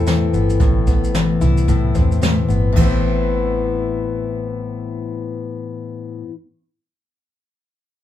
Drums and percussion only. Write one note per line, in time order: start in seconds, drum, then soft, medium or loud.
0.07 snare loud
0.07 shaker medium
0.34 shaker medium
0.50 shaker medium
0.60 kick loud
0.60 shaker medium
0.87 kick medium
0.87 shaker medium
1.04 shaker medium
1.15 snare loud
1.15 shaker medium
1.41 kick loud
1.41 shaker medium
1.57 shaker medium
1.68 kick medium
1.68 shaker medium
1.95 kick loud
1.95 shaker medium
2.12 shaker medium
2.22 snare loud
2.22 shaker medium
2.50 shaker medium
2.76 kick loud
2.76 crash medium